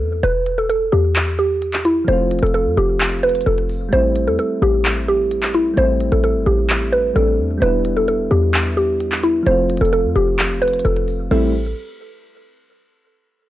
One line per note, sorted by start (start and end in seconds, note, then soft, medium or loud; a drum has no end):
0.00 0.22 E2 loud
0.00 0.21 A4 medium
0.23 0.90 E1 loud
0.23 0.56 B4 loud
0.23 closed hi-hat medium
0.46 closed hi-hat medium
0.58 0.67 A4 medium
0.70 0.87 A4 medium
0.70 closed hi-hat medium
0.92 2.04 E2 loud
0.92 1.36 G4 medium
1.16 clap loud
1.16 closed hi-hat medium
1.39 1.82 G4 medium
1.62 closed hi-hat medium
1.73 clap medium
1.85 2.03 E4 medium
1.85 closed hi-hat medium
2.04 2.41 F1 loud
2.04 3.87 F3 medium
2.04 3.89 A3 medium
2.04 2.41 C5 loud
2.04 closed hi-hat medium
2.10 3.90 C4 medium
2.10 3.91 F4 medium
2.31 closed hi-hat medium
2.39 2.67 F1 loud
2.39 2.51 A4 medium
2.39 closed hi-hat medium
2.47 closed hi-hat soft
2.54 2.72 A4 medium
2.54 closed hi-hat medium
2.66 2.77 F2 loud
2.77 3.44 F1 loud
2.77 3.21 G4 medium
3.00 clap loud
3.00 closed hi-hat medium
3.23 3.41 B4 loud
3.23 closed hi-hat medium
3.29 closed hi-hat medium
3.35 closed hi-hat medium
3.41 closed hi-hat medium
3.46 3.91 F1 loud
3.46 3.90 A4 medium
3.46 closed hi-hat soft
3.58 closed hi-hat medium
3.69 open hi-hat medium
3.89 5.72 G3 medium
3.89 5.73 A3 medium
3.93 4.29 A1 loud
3.93 5.74 C4 medium
3.93 4.25 C5 loud
3.93 closed hi-hat medium
3.97 5.76 E4 medium
4.16 closed hi-hat medium
4.27 4.38 E2 loud
4.27 4.36 A4 medium
4.39 4.56 A4 medium
4.39 closed hi-hat medium
4.62 5.73 A1 loud
4.62 5.05 G4 medium
4.85 clap loud
4.85 closed hi-hat medium
5.08 5.52 G4 medium
5.31 closed hi-hat medium
5.43 clap medium
5.54 5.72 E4 medium
5.54 closed hi-hat medium
5.74 6.11 A1 loud
5.74 7.11 G3 medium
5.74 7.13 A3 medium
5.74 6.10 C5 loud
5.74 closed hi-hat medium
5.79 7.14 C4 medium
5.79 7.15 E4 medium
6.00 closed hi-hat medium
6.12 6.36 A1 loud
6.12 6.21 A4 medium
6.12 closed hi-hat medium
6.24 6.41 A4 medium
6.24 closed hi-hat medium
6.35 6.46 G1 loud
6.46 7.13 A1 loud
6.46 6.90 G4 medium
6.70 clap loud
6.70 closed hi-hat medium
6.92 7.10 B4 medium
6.92 closed hi-hat medium
7.14 7.40 A1 loud
7.14 7.56 G3 medium
7.14 7.62 A3 soft
7.14 7.62 C4 soft
7.14 7.59 A4 medium
7.14 closed hi-hat medium
7.18 7.62 D4 medium
7.39 7.61 E2 loud
7.58 9.41 G3 medium
7.58 9.42 B3 medium
7.62 8.28 E1 loud
7.62 9.43 D4 medium
7.62 7.94 B4 loud
7.62 closed hi-hat medium
7.66 9.45 E4 medium
7.85 closed hi-hat medium
7.97 8.05 A4 medium
8.08 8.26 A4 medium
8.08 closed hi-hat medium
8.31 9.43 E2 loud
8.31 8.74 G4 medium
8.54 clap loud
8.54 closed hi-hat medium
8.77 9.21 G4 medium
9.00 closed hi-hat medium
9.12 clap medium
9.23 9.41 E4 medium
9.23 closed hi-hat medium
9.43 9.80 F1 loud
9.43 11.26 F3 medium
9.43 11.27 A3 medium
9.43 9.79 C5 loud
9.43 closed hi-hat medium
9.48 11.28 C4 medium
9.48 11.30 F4 medium
9.70 closed hi-hat medium
9.77 10.06 F1 loud
9.77 9.90 A4 medium
9.77 closed hi-hat medium
9.85 closed hi-hat medium
9.93 10.10 A4 medium
9.93 closed hi-hat medium
10.04 10.15 F2 loud
10.16 10.82 F1 loud
10.16 10.59 G4 medium
10.39 clap loud
10.39 closed hi-hat medium
10.62 10.79 B4 loud
10.62 closed hi-hat medium
10.68 closed hi-hat medium
10.73 closed hi-hat medium
10.79 closed hi-hat medium
10.85 11.29 F1 loud
10.85 11.28 A4 medium
10.85 closed hi-hat soft
10.97 closed hi-hat medium
11.08 open hi-hat medium
11.31 11.74 A1 loud
11.31 11.53 G3 medium
11.31 11.53 A3 medium
11.31 11.53 C4 medium
11.31 11.53 E4 medium
11.31 11.53 A4 medium
11.31 crash medium